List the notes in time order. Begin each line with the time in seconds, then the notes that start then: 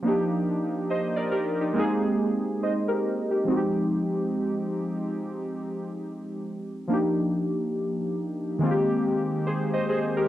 0.02 F3 A#3 D4
0.07 D#4 G4
0.90 C5 D#5
1.16 A#4 D5
1.31 G4 A#4
1.61 D#4 G4
1.73 G#3 A#3 C4
1.77 D#4 G#4
2.63 C5 D#5
2.88 G4 A#4
3.31 D#4 G4
3.44 F3 G#3 C4
3.49 D#4 F#4
3.56 G4
6.88 F3 A#3 D4
6.92 D#4 G4
8.59 D#3 G#3 A#3
8.63 C4 F4
8.71 G4
9.47 G#4 C5
9.73 C5 D#5
9.89 G#4 C5
10.17 G4 A#4